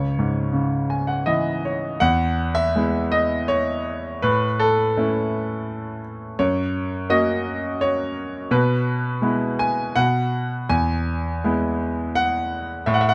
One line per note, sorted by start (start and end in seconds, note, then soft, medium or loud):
0.00 1.98 C#2 medium
0.00 1.60 C#5 medium
0.19 1.61 G#2 soft
0.53 1.98 C#3 soft
0.90 1.07 G#5 soft
1.07 1.26 F#5 soft
1.26 2.00 E3 soft
1.26 1.97 D#5 medium
1.26 1.62 E5 soft
1.65 1.99 C#5 soft
2.00 4.19 E2 medium
2.00 2.58 F#5 medium
2.55 3.13 E5 medium
2.76 4.20 G#3 soft
2.76 4.20 B3 soft
2.76 4.20 E4 soft
3.12 3.50 D#5 medium
3.48 4.19 C#5 medium
4.22 6.35 A2 medium
4.22 4.57 B4 medium
4.60 5.99 A4 medium
4.97 6.36 A3 soft
4.97 6.36 C#4 soft
4.97 6.36 E4 soft
6.39 8.48 F#2 medium
6.39 7.12 C#5 medium
7.10 8.48 A#3 medium
7.10 8.48 C#4 soft
7.10 8.48 F#4 soft
7.10 7.83 D#5 medium
7.81 8.48 C#5 medium
8.51 9.92 B2 medium
8.51 9.56 B4 medium
9.22 9.93 G#3 soft
9.22 9.94 B3 soft
9.22 9.94 E4 soft
9.59 9.97 G#5 medium
9.96 10.68 B2 medium
9.96 10.72 F#5 medium
10.69 12.83 E2 medium
10.69 12.20 G#5 medium
11.44 12.84 G#3 soft
11.44 12.84 B3 soft
11.44 12.84 E4 soft
12.15 12.89 F#5 medium
12.86 13.14 A2 medium
12.86 12.95 E5 medium
12.94 13.03 F#5 medium
13.01 13.10 E5 medium
13.09 13.14 F#5 medium